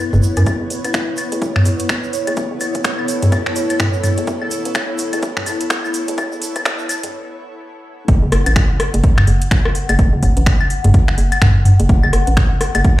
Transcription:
Already playing: B3 E4 B4 C#5
0.13 F#1, mid tom, shaker
0.23 shaker
0.37 F#2, closed hi-hat, claves, shaker
0.46 F#1 B3 C#5, kick, closed hi-hat, claves, shaker
0.61 F#1
0.70 F#1, open hi-hat, shaker
0.84 A1 E4, closed hi-hat, claves, shaker
0.94 finger snap, kick, closed hi-hat, shaker
1.17 open hi-hat, claves, shaker
1.31 F#1 A4, closed hi-hat, shaker
1.42 kick, closed hi-hat, shaker
1.56 finger snap, mid tom, claves
1.65 F#1, open hi-hat, shaker
1.79 closed hi-hat, shaker
1.89 finger snap, kick, closed hi-hat, claves, shaker
2.03 shaker
2.13 open hi-hat, shaker
2.27 F#1, closed hi-hat, claves, shaker
2.37 F#1, kick, closed hi-hat, shaker
2.51 F#1
2.60 F#1, open hi-hat, claves, shaker
2.74 A1, kick, closed hi-hat, shaker
2.84 finger snap, kick, closed hi-hat, shaker
2.99 claves
3.08 open hi-hat, shaker
3.23 F#1, closed hi-hat, mid tom, shaker
3.32 kick, closed hi-hat, claves, shaker
3.46 finger snap
3.56 F#1, open hi-hat, shaker
3.70 closed hi-hat, claves, shaker
3.79 finger snap, kick, closed hi-hat, mid tom, shaker
3.93 shaker
4.03 mid tom, open hi-hat, claves, shaker
4.17 F#1, closed hi-hat, shaker
4.27 F#1, kick, closed hi-hat, shaker
4.42 F#1, claves
4.51 open hi-hat, shaker
4.65 A1, closed hi-hat, shaker
4.75 finger snap, kick, closed hi-hat, claves, shaker
4.98 open hi-hat, shaker
5.13 F#1, closed hi-hat, claves, shaker
5.22 kick, closed hi-hat, shaker
5.37 finger snap, mid tom
5.46 F#1, open hi-hat, claves, shaker
5.61 closed hi-hat, shaker
5.70 finger snap, kick, closed hi-hat, shaker
5.84 claves, shaker
5.94 open hi-hat, shaker
6.08 F#1, closed hi-hat, shaker
6.18 kick, closed hi-hat, claves, shaker
6.32 F#1, shaker
6.42 F#1, open hi-hat, shaker
6.56 A1, kick, closed hi-hat, claves, shaker
6.65 finger snap, kick, closed hi-hat, shaker
6.79 shaker
6.89 open hi-hat, claves, shaker
7.03 F#1, closed hi-hat, mid tom, shaker
8.08 F#1 F#5, kick, closed hi-hat
8.23 F#1
8.32 F#1, cross-stick, open hi-hat
8.46 A1, closed hi-hat, claves
8.56 finger snap, kick, closed hi-hat
8.80 cross-stick, open hi-hat
8.94 F#1, closed hi-hat
9.04 kick, closed hi-hat
9.18 finger snap, mid tom, claves
9.27 F#1, open hi-hat
9.42 closed hi-hat
9.51 finger snap, kick, closed hi-hat
9.65 cross-stick
9.75 open hi-hat
9.89 F#1, closed hi-hat, claves
9.99 F#1, kick, closed hi-hat
10.13 F#1
10.23 F#1, kick, open hi-hat
10.37 A1, closed hi-hat
10.46 finger snap, kick, closed hi-hat
10.61 claves
10.70 open hi-hat
10.84 F#1, closed hi-hat, mid tom
10.94 kick, closed hi-hat
11.08 finger snap
11.18 F#1, open hi-hat
11.32 closed hi-hat, claves
11.42 finger snap, kick, closed hi-hat, mid tom
11.65 mid tom, open hi-hat
11.80 F#1, closed hi-hat
11.89 F#1, kick, closed hi-hat
12.03 F#1, claves
12.13 F#1, cross-stick, open hi-hat
12.27 A1, closed hi-hat
12.37 finger snap, kick, closed hi-hat
12.61 cross-stick, open hi-hat
12.75 F#1, closed hi-hat, claves
12.84 kick, closed hi-hat

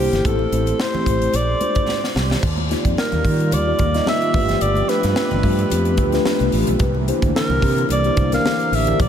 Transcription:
Already playing: A#3 D4 D#4 E4 G4
0.00 C5
0.12 G1, snare, closed hi-hat, low conga
0.25 A1 A3 C4 E4 G4 A4 C5, kick, closed hi-hat, low conga
0.39 high conga
0.52 A1 A3 C4 E4 G4 C5, closed hi-hat
0.66 closed hi-hat, high conga
0.80 C5, snare
0.94 A3 C4 E4 G4 C5, low conga
1.06 A1, kick, closed hi-hat, muted conga
1.22 closed hi-hat
1.33 A#1 D5, closed hi-hat, high conga
1.61 G#3 D4 F4 G4 C5, closed hi-hat, muted conga, high conga
1.75 kick, closed hi-hat
1.87 snare, muted conga, high conga
2.04 snare
2.15 C2, snare, muted conga
2.30 snare, low conga
2.42 D#2 D#3 G3 F4, kick, crash, muted conga
2.57 high conga
2.69 A#3 D#4 F4 G4 D5, snare, closed hi-hat, muted conga
2.85 F2, kick, closed hi-hat
2.97 A#4, snare, muted conga
3.12 D#2, closed hi-hat, low conga
3.25 D#3, kick, open hi-hat
3.40 closed hi-hat
3.51 D#2 D5, closed hi-hat, muted conga, high conga
3.66 A#3 D#4 F4 G4 D5
3.79 D#2, kick, closed hi-hat, high conga
3.94 A#3 D#4 F4 G4 D#5, snare, closed hi-hat
4.06 E5, snare, high conga
4.22 closed hi-hat
4.34 G1 F3 A3 B3 F4 G4 B4, kick, open hi-hat, muted conga
4.49 snare, closed hi-hat, low conga
4.61 G1 D5, closed hi-hat
4.75 closed hi-hat, high conga
4.89 A3 D4 F4 G4 B4, snare, closed hi-hat
5.03 G2, snare, closed hi-hat
5.16 snare
5.31 G1, closed hi-hat, low conga
5.43 G2 A3 D4 F4 G4 B4, kick, open hi-hat
5.59 closed hi-hat
5.70 F2, closed hi-hat, muted conga, high conga
5.85 closed hi-hat
5.97 D2, kick, closed hi-hat, high conga
6.12 A3 D4 F4 G4 B4, snare, closed hi-hat
6.25 snare, high conga
6.40 C2, closed hi-hat
6.52 A1, open hi-hat, muted conga
6.67 B1, closed hi-hat, low conga
6.79 C2 D3 E3 A#3, kick, closed hi-hat
6.95 high conga
7.07 A#3 D4 E4 G4 C5, closed hi-hat
7.22 D2, kick, closed hi-hat
7.36 A#4, snare
7.49 C2, low conga
7.62 C3, kick, open hi-hat, muted conga
7.78 closed hi-hat
7.89 C2 D5, closed hi-hat, muted conga, high conga
8.04 A#3 D4 E4 G4 C5, closed hi-hat
8.17 C2, kick, closed hi-hat, high conga
8.32 E3 A#3 D4 G4 A#4 F5, snare, closed hi-hat
8.45 snare, muted conga, high conga
8.60 closed hi-hat
8.72 A1 E5, open hi-hat, muted conga
8.86 A#3 D4 E4 G4 A#4, closed hi-hat, low conga
9.00 A#1 G#4 D5, kick, closed hi-hat

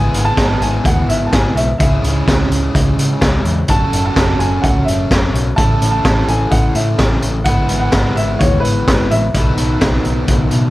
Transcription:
Already playing: G#3 B3 E4 G#4 G#5
0.12 G#1, closed hi-hat
0.19 G#5
0.25 A5
0.37 G#1, kick, snare, closed hi-hat
0.60 G#1 G#5, closed hi-hat
0.84 D#2 F#5, kick, closed hi-hat
1.08 G#1 E5, closed hi-hat
1.27 A5
1.32 G#1 G#5, kick, snare, closed hi-hat
1.55 B1 E5, closed hi-hat
1.78 C#2 C#3 G#3 C#4 E5, kick, closed hi-hat
1.82 E4 G#4
2.02 C#2, closed hi-hat
2.27 C#2, kick, snare, closed hi-hat
2.50 C#2, closed hi-hat
2.75 C#2, kick, closed hi-hat
2.97 C#3, closed hi-hat
3.21 C#2, kick, snare, closed hi-hat
3.45 E2, closed hi-hat
3.68 F#1 F#3 C#4 F#4 A4 A5, kick, closed hi-hat
3.91 F#1, closed hi-hat
4.06 A5
4.16 F#1, kick, snare, closed hi-hat
4.39 F#1 G#5, closed hi-hat
4.62 C#2 F#5, kick, closed hi-hat
4.84 F#1 E5, closed hi-hat
5.11 F#1, kick, snare, closed hi-hat
5.34 B1, closed hi-hat
5.56 A1 A2 A3 C#4 E4 A4 A5, kick, closed hi-hat
5.82 A1, closed hi-hat
5.91 A5
6.05 A1, kick, snare, closed hi-hat
6.28 A1 G#5, closed hi-hat
6.50 A1 F#5, kick, closed hi-hat
6.75 A2 E5, closed hi-hat
6.98 A1, kick, snare, closed hi-hat
7.22 A1, closed hi-hat
7.44 G#1 G#2 E3 G#3 B3 E4 G#4 B4 F#5, kick, closed hi-hat
7.69 G#1, closed hi-hat
7.80 F#5
7.92 G#1, kick, snare, closed hi-hat
8.16 G#1 E5, closed hi-hat
8.39 D#2 C#5, kick, closed hi-hat
8.60 G#1 B4
8.65 closed hi-hat
8.87 G#1, kick, snare, closed hi-hat
9.11 A1 E5, closed hi-hat
9.34 B1 B2 D#3 F#3 B3 D#4 A4 B4, kick, closed hi-hat
9.57 B1, closed hi-hat
9.81 B1, kick, snare, closed hi-hat
10.05 B1, closed hi-hat
10.28 B1, kick, closed hi-hat
10.51 B2, closed hi-hat

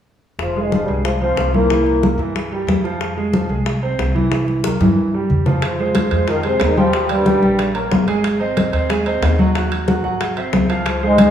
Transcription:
0.39 F1 F3 F4, high bongo, high conga
0.56 G#3 G#4, high conga
0.62 G#2 G#3
0.71 F3 F4, high bongo, high conga
0.84 G2 G3
0.88 C2 G#3 G#4, high conga
1.04 F3 F4, high bongo, high conga
1.21 F3 C4 F4 C5, high conga
1.36 C2, high bongo, low bongo, high conga
1.54 A#2 E3 A#3 E4, high conga
1.70 E3 E4, high bongo, high conga
1.86 high bongo, high conga
2.03 A#3 A#4, high bongo, high conga
2.18 G2 E3 E4, high bongo
2.36 high bongo, high conga
2.52 G3 G4, high conga
2.67 F2, high bongo, low bongo, high conga
2.84 F3 F4, high bongo, high conga
3.01 high bongo, high conga
3.17 G#3 G#4, high conga
3.33 F3 F4, high bongo, high conga
3.49 C2 G#3 G#4, high conga
3.66 high bongo, high conga
3.83 C4 C5, high conga
3.99 C2, high bongo, low bongo, high conga
4.15 E3 E4, high conga
4.31 E3 E4, high bongo, high conga
4.48 high bongo, high conga
4.64 A#3 A#4, high bongo, high conga
4.80 G2 E3 E4, high bongo, high conga
5.14 G3 G4
5.30 F2, low conga
5.46 F3 F4, low bongo, low conga
5.62 F3 F4, high bongo, high conga, high timbale
5.79 G#3 G#4 C5, high conga
5.95 high bongo, high conga, high timbale, low timbale
6.11 F2 G#3 G#4 C5, high conga, high timbale
6.27 D#3 F3 D#4 F4 F5, high bongo, high conga, high timbale
6.43 C3 G#3 C4 G#4 C5, high conga, high timbale
6.60 D#2 D#3 D#4, high bongo, low bongo, high conga, high timbale, low timbale
6.77 F3 G3 F4 G4 G5, high conga
6.93 G3 G4 G5, high bongo, high timbale
7.09 G2 G3, high bongo, high conga, high timbale
7.25 G3 G4 G5, high bongo, high conga, low timbale
7.42 A#1 G3 G4 G5, high bongo
7.59 high bongo, high conga, high timbale
7.75 A#3 A#4 C#5, high conga, high timbale
7.91 G#1, high bongo, low bongo, high conga, low timbale
8.08 G#3 G#4 G#5, high bongo, high conga, high timbale
8.24 high bongo, high conga, high timbale
8.40 C4 C5 D#5, high conga
8.57 high bongo, high conga, high timbale, low timbale
8.73 D#2 C4 C5 D#5, high conga, high timbale
8.89 G#3 G#4 G#5, high bongo, high conga, high timbale
9.06 C4 C5 D#5, high conga, high timbale
9.22 D#2, high bongo, low bongo, high conga, high timbale, low timbale
9.39 F#3 F#4 F#5, high conga
9.55 F#3 F#4 F#5, high bongo, high conga, high timbale
9.72 high bongo, high conga, high timbale
9.88 F#3 F#4 F#5, high bongo, high conga, low timbale
10.04 G#1 F#3 F#4 F#5, high bongo
10.21 high bongo, high conga, high timbale
10.37 C4 C5 E5, high conga, high timbale
10.53 C#2, high bongo, low bongo, high conga, low timbale
10.69 F3 F4 F5, high bongo, high conga, high timbale
10.86 F3 F4, high bongo, high conga, high timbale
11.02 G#2 G#3 G#4 C5, high conga
11.18 high bongo, high conga, high timbale, low timbale

